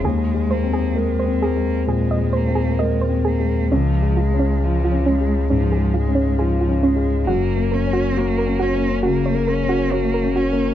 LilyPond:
<<
  \new Staff \with { instrumentName = "Synth pluck" } { \time 4/4 \key des \major \tempo 4 = 67 aes'16 r16 c''16 aes'16 r16 c''16 aes'16 r16 aes'16 ees''16 c''16 aes'16 ees''16 c''16 aes'16 r16 | des'16 r16 f'16 des'16 r16 f'16 des'16 r16 des'16 aes'16 f'16 des'16 aes'16 f'16 des'16 r16 | ges'16 r16 bes'16 ges'16 r16 bes'16 ges'16 r16 ges'16 des''16 bes'16 ges'16 des''16 bes'16 ges'16 r16 | }
  \new Staff \with { instrumentName = "Grand piano" } { \time 4/4 \key des \major \tuplet 3/2 { ees,8 aes8 c'8 bes'8 c'8 aes8 bes,8 aes8 c'8 bes'8 c'8 aes8 } | \tuplet 3/2 { des,8 aes8 des'8 f'8 des'8 aes8 aes,8 aes8 des'8 f'8 des'8 aes8 } | \tuplet 3/2 { ges,8 bes8 des'8 ges'8 des'8 bes8 des8 bes8 des'8 ges'8 des'8 bes8 } | }
  \new Staff \with { instrumentName = "Cello" } { \time 4/4 \key des \major aes8 bes8 aes8 bes8 aes8 bes8 aes8 bes8 | f8 aes8 f8 aes8 f8 aes8 f8 aes8 | bes8 des'8 bes8 des'8 bes8 des'8 bes8 des'8 | }
  \new Staff \with { instrumentName = "Sub bass" } { \clef bass \time 4/4 \key des \major ees,1 | des,1 | ges,,1 | }
>>